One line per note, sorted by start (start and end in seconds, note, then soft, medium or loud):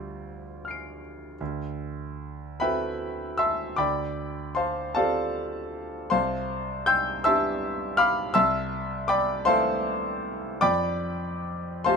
0.00 1.34 D2 soft
0.00 1.00 G3 medium
0.00 1.34 F4 soft
0.00 1.35 C5 soft
0.00 1.35 D5 soft
0.00 1.36 E5 soft
0.65 1.36 F6 soft
0.65 1.38 C7 soft
0.71 1.39 D7 soft
1.41 2.59 D2 soft
2.60 3.75 C4 soft
2.60 3.75 E4 soft
2.60 3.75 F#4 soft
2.60 3.75 A4 soft
2.60 3.36 B4 medium
2.60 3.35 E5 medium
2.60 3.36 G5 medium
2.60 3.39 B5 medium
3.38 3.76 E5 medium
3.38 3.76 A5 medium
3.38 3.76 C6 medium
3.38 3.78 E6 medium
3.76 4.92 D2 soft
3.76 4.53 D5 medium
3.76 4.53 G5 medium
3.76 4.53 B5 medium
3.76 4.56 D6 medium
4.55 4.93 C5 medium
4.55 4.93 F5 medium
4.55 4.93 A5 medium
4.55 4.95 C6 medium
4.95 6.09 C4 soft
4.95 6.09 F4 soft
4.95 6.09 G4 soft
4.95 6.08 A4 medium
4.95 6.08 D5 medium
4.95 6.08 F5 medium
4.95 6.10 A5 medium
6.10 7.22 C2 medium
6.10 6.84 C5 medium
6.10 6.84 F5 medium
6.10 6.84 A5 medium
6.10 6.86 C6 medium
6.86 7.23 G5 medium
6.86 7.23 C6 medium
6.86 7.23 E6 medium
6.86 7.25 G6 medium
7.24 8.31 B3 soft
7.24 8.32 D4 soft
7.24 8.32 E4 soft
7.24 8.32 G4 soft
7.24 7.95 E5 medium
7.24 7.95 A5 medium
7.24 7.95 C6 medium
7.24 7.98 E6 loud
7.97 8.32 F5 medium
7.97 8.32 B5 medium
7.97 8.33 D6 medium
7.97 8.35 F6 loud
8.34 9.44 C2 medium
8.34 9.05 E5 medium
8.34 9.05 A5 medium
8.34 9.05 C6 medium
8.34 9.09 E6 loud
9.08 9.45 D5 medium
9.08 9.44 G5 medium
9.08 9.44 B5 medium
9.08 9.46 D6 loud
9.45 10.58 A3 soft
9.45 10.58 B3 soft
9.45 10.58 E4 medium
9.45 10.58 A4 medium
9.45 10.57 C5 medium
9.45 10.58 F5 medium
9.45 10.58 A5 medium
9.45 10.61 C6 loud
10.61 11.82 F2 medium
10.61 11.81 D5 medium
10.61 11.81 G5 medium
10.61 11.81 B5 medium
10.61 11.85 D6 loud
11.84 11.97 A3 soft
11.84 11.97 C4 soft
11.84 11.97 F4 soft
11.84 11.97 G4 medium
11.84 11.97 C5 medium
11.84 11.97 F5 medium
11.84 11.97 A5 medium
11.84 11.97 C6 loud